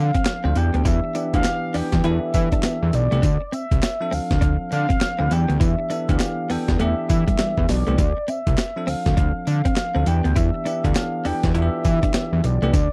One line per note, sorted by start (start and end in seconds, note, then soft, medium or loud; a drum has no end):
0.00 0.12 D3 loud
0.00 0.28 F3 medium
0.00 0.28 C4 medium
0.00 0.28 D4 medium
0.00 0.29 A4 medium
0.00 0.59 F5 loud
0.14 0.22 C4 medium
0.14 kick medium
0.14 closed hi-hat medium
0.25 snare loud
0.25 clap medium
0.25 closed hi-hat medium
0.25 tambourine medium
0.44 0.54 D2 medium
0.44 0.56 F3 medium
0.44 0.52 C4 medium
0.44 0.56 C4 medium
0.44 0.55 D4 medium
0.44 0.56 C5 medium
0.55 0.71 E2 loud
0.55 1.10 E3 medium
0.55 1.10 B3 medium
0.55 1.10 D4 medium
0.55 1.11 G4 medium
0.55 0.89 G5 loud
0.55 muted clean electric guitar stroke soft
0.55 closed hi-hat medium
0.55 tambourine medium
0.74 0.84 D2 medium
0.74 0.82 B3 medium
0.74 closed hi-hat soft
0.85 1.01 E2 loud
0.85 0.98 E4 medium
0.85 1.35 E5 loud
0.85 kick loud
0.85 closed hi-hat medium
0.85 tambourine medium
1.04 muted clean electric guitar stroke soft
1.15 1.32 E3 medium
1.15 1.32 B3 medium
1.15 1.28 D4 medium
1.15 1.32 D4 medium
1.15 1.32 G4 medium
1.15 closed hi-hat medium
1.15 tambourine medium
1.33 1.43 D2 medium
1.33 1.71 E3 medium
1.33 1.71 B3 medium
1.33 1.71 D4 medium
1.33 1.71 G4 medium
1.33 1.78 F5 loud
1.33 kick medium
1.33 closed hi-hat medium
1.44 snare loud
1.44 clap medium
1.44 closed hi-hat medium
1.44 tambourine medium
1.74 1.82 E2 soft
1.74 2.02 E3 medium
1.74 2.02 B3 medium
1.74 1.87 D4 medium
1.74 2.02 D4 medium
1.74 2.02 G4 medium
1.74 2.08 G5 loud
1.74 open hi-hat medium
1.74 tambourine medium
1.92 2.02 E2 loud
1.92 kick medium
1.92 snare medium
1.92 closed hi-hat medium
2.04 2.19 E2 loud
2.04 2.97 E3 medium
2.04 2.97 B3 medium
2.04 2.98 D4 medium
2.04 2.17 E4 medium
2.04 2.98 A4 loud
2.04 2.96 E5 loud
2.04 closed hi-hat medium
2.34 2.49 E3 loud
2.34 muted clean electric guitar stroke soft
2.34 kick medium
2.34 closed hi-hat medium
2.34 tambourine medium
2.52 2.60 D4 medium
2.52 kick medium
2.52 closed hi-hat medium
2.63 2.76 B3 medium
2.63 snare loud
2.63 clap medium
2.63 closed hi-hat medium
2.63 tambourine medium
2.83 2.92 E2 loud
2.93 3.09 B1 medium
2.93 3.54 D5 loud
2.93 muted clean electric guitar stroke soft
2.93 closed hi-hat medium
2.93 tambourine medium
3.11 3.21 C2 loud
3.11 3.23 E3 medium
3.11 3.19 A3 medium
3.11 3.23 B3 medium
3.11 3.23 D4 medium
3.11 3.24 G4 loud
3.11 closed hi-hat medium
3.22 3.38 D2 loud
3.22 3.35 D4 medium
3.22 kick loud
3.22 closed hi-hat medium
3.22 tambourine medium
3.41 muted clean electric guitar stroke soft
3.52 3.65 C4 medium
3.52 4.15 E5 loud
3.52 closed hi-hat medium
3.52 tambourine medium
3.71 3.81 C2 medium
3.71 kick medium
3.71 closed hi-hat medium
3.82 snare loud
3.82 clap medium
3.82 closed hi-hat medium
3.82 tambourine medium
4.00 5.03 F3 medium
4.00 5.03 C4 medium
4.00 5.03 D4 medium
4.00 5.04 A4 loud
4.11 4.20 D2 soft
4.11 4.24 C4 medium
4.11 4.73 F5 loud
4.11 open hi-hat medium
4.11 tambourine medium
4.31 4.40 D2 loud
4.31 kick medium
4.31 snare medium
4.31 closed hi-hat soft
4.41 4.57 D2 loud
4.41 4.54 D4 loud
4.41 kick medium
4.41 closed hi-hat medium
4.71 4.87 D3 loud
4.71 5.34 F5 loud
4.71 muted clean electric guitar stroke soft
4.71 closed hi-hat medium
4.71 tambourine medium
4.89 4.97 C4 medium
4.89 kick medium
4.89 closed hi-hat medium
5.01 snare loud
5.01 clap medium
5.01 closed hi-hat medium
5.01 tambourine medium
5.19 5.29 D2 medium
5.19 5.31 F3 medium
5.19 5.27 C4 medium
5.19 5.31 C4 medium
5.19 5.31 D4 medium
5.19 5.32 B4 medium
5.30 5.46 E2 loud
5.30 5.85 E3 medium
5.30 5.86 B3 medium
5.30 5.86 D4 medium
5.30 5.86 G4 medium
5.30 5.63 G5 loud
5.30 muted clean electric guitar stroke medium
5.30 closed hi-hat medium
5.30 tambourine medium
5.49 5.59 D2 loud
5.49 5.57 B3 medium
5.49 closed hi-hat medium
5.60 5.76 E2 loud
5.60 5.73 E4 medium
5.60 6.12 E5 loud
5.60 kick loud
5.60 closed hi-hat medium
5.60 tambourine medium
5.79 muted clean electric guitar stroke soft
5.90 6.07 E3 medium
5.90 6.07 B3 medium
5.90 6.03 D4 medium
5.90 6.07 D4 medium
5.90 6.07 A4 medium
5.90 closed hi-hat medium
5.90 tambourine medium
6.08 6.18 D2 medium
6.08 6.46 E3 medium
6.08 6.46 B3 medium
6.08 6.46 D4 medium
6.08 6.46 G4 medium
6.08 6.52 F5 loud
6.08 kick medium
6.08 closed hi-hat medium
6.20 snare loud
6.20 clap medium
6.20 closed hi-hat medium
6.20 tambourine medium
6.50 6.58 E2 medium
6.50 6.77 E3 medium
6.50 6.62 B3 medium
6.50 6.77 B3 medium
6.50 6.78 D4 medium
6.50 6.78 A4 medium
6.50 6.80 G5 loud
6.50 open hi-hat medium
6.50 tambourine medium
6.68 6.78 E2 loud
6.68 kick medium
6.68 snare medium
6.68 closed hi-hat soft
6.79 6.95 E2 medium
6.79 7.73 E3 medium
6.79 6.92 A3 medium
6.79 7.73 B3 medium
6.79 7.73 D4 medium
6.79 7.73 G4 loud
6.79 7.71 E5 loud
6.79 closed hi-hat medium
7.09 7.25 E3 loud
7.09 muted clean electric guitar stroke soft
7.09 kick medium
7.09 closed hi-hat medium
7.09 tambourine medium
7.28 7.35 G3 medium
7.28 kick medium
7.28 closed hi-hat medium
7.38 7.52 G3 medium
7.38 snare loud
7.38 clap medium
7.38 closed hi-hat medium
7.38 tambourine medium
7.57 7.67 E2 medium
7.57 kick medium
7.69 7.84 B1 medium
7.69 8.31 D5 loud
7.69 muted clean electric guitar stroke soft
7.69 snare medium
7.69 open hi-hat medium
7.69 tambourine medium
7.87 7.97 C2 medium
7.87 7.99 E3 medium
7.87 7.95 A3 medium
7.87 7.99 B3 medium
7.87 7.99 D4 medium
7.87 7.99 G4 medium
7.87 closed hi-hat medium
7.98 8.13 D2 loud
7.98 8.11 D4 medium
7.98 kick loud
7.98 closed hi-hat medium
7.98 tambourine medium
8.17 muted clean electric guitar stroke soft
8.28 8.41 C4 medium
8.28 8.91 E5 loud
8.28 closed hi-hat medium
8.28 tambourine medium
8.47 8.56 C2 medium
8.47 kick medium
8.47 closed hi-hat medium
8.58 snare loud
8.58 clap medium
8.58 closed hi-hat medium
8.58 tambourine medium
8.76 9.78 F3 medium
8.76 9.79 C4 medium
8.76 9.79 D4 medium
8.76 9.79 A4 medium
8.87 8.95 D2 medium
8.87 9.00 C4 medium
8.87 9.48 F5 loud
8.87 open hi-hat medium
8.87 tambourine medium
9.06 9.15 D2 loud
9.06 kick medium
9.06 snare medium
9.06 closed hi-hat medium
9.17 9.32 D2 medium
9.17 9.30 D4 loud
9.17 kick medium
9.17 closed hi-hat medium
9.47 9.62 D3 loud
9.47 10.09 F5 loud
9.47 muted clean electric guitar stroke soft
9.47 closed hi-hat medium
9.47 tambourine medium
9.65 9.73 C4 medium
9.65 kick medium
9.65 closed hi-hat medium
9.76 snare loud
9.76 clap medium
9.76 closed hi-hat medium
9.76 tambourine medium
9.95 10.04 D2 medium
9.95 10.06 F3 medium
9.95 10.03 C4 medium
9.95 10.06 C4 medium
9.95 10.05 D4 medium
9.95 10.07 A4 medium
10.06 10.22 E2 medium
10.06 10.60 E3 medium
10.06 10.61 B3 medium
10.06 10.61 D4 medium
10.06 10.61 G4 medium
10.06 10.38 G5 loud
10.06 muted clean electric guitar stroke soft
10.06 closed hi-hat medium
10.06 tambourine medium
10.24 10.34 D2 loud
10.24 10.32 B3 medium
10.24 closed hi-hat medium
10.36 10.51 E2 loud
10.36 10.48 E4 medium
10.36 10.87 E5 loud
10.36 kick loud
10.36 closed hi-hat medium
10.36 tambourine medium
10.54 muted clean electric guitar stroke soft
10.65 10.82 E3 medium
10.65 10.82 B3 medium
10.65 10.78 D4 medium
10.65 10.82 D4 medium
10.65 10.82 G4 medium
10.65 closed hi-hat medium
10.65 tambourine medium
10.83 10.94 D2 medium
10.83 11.21 E3 medium
10.83 11.21 B3 medium
10.83 11.21 D4 medium
10.83 11.22 A4 medium
10.83 11.28 F5 loud
10.83 kick medium
10.83 closed hi-hat medium
10.95 snare loud
10.95 clap medium
10.95 closed hi-hat medium
10.95 tambourine medium
11.24 11.33 E2 medium
11.24 11.52 E3 medium
11.24 11.52 B3 medium
11.24 11.38 D4 medium
11.24 11.52 D4 medium
11.24 11.53 G4 medium
11.24 11.55 G5 loud
11.24 open hi-hat medium
11.24 tambourine medium
11.43 11.53 E2 loud
11.43 kick loud
11.43 snare medium
11.43 closed hi-hat medium
11.55 11.70 E2 loud
11.55 12.48 E3 medium
11.55 12.48 B3 medium
11.55 12.48 D4 medium
11.55 11.67 E4 medium
11.55 11.63 F4 medium
11.55 12.47 E5 loud
11.55 closed hi-hat medium
11.62 12.51 G4 medium
11.85 12.00 E3 loud
11.85 muted clean electric guitar stroke soft
11.85 kick medium
11.85 closed hi-hat medium
11.85 tambourine medium
12.03 12.11 D4 medium
12.03 kick medium
12.03 closed hi-hat medium
12.14 12.27 B3 medium
12.14 snare loud
12.14 clap medium
12.14 closed hi-hat medium
12.14 tambourine medium
12.33 12.42 E2 loud
12.44 12.59 B1 medium
12.44 12.93 D5 loud
12.44 muted clean electric guitar stroke soft
12.44 closed hi-hat loud
12.44 tambourine medium
12.62 12.72 C2 medium
12.62 12.74 E3 medium
12.62 12.70 A3 medium
12.62 12.74 B3 medium
12.62 12.74 D4 medium
12.62 12.74 G4 loud
12.62 closed hi-hat soft
12.73 12.89 D2 loud
12.73 12.86 D4 loud
12.73 kick loud
12.73 closed hi-hat medium
12.73 tambourine medium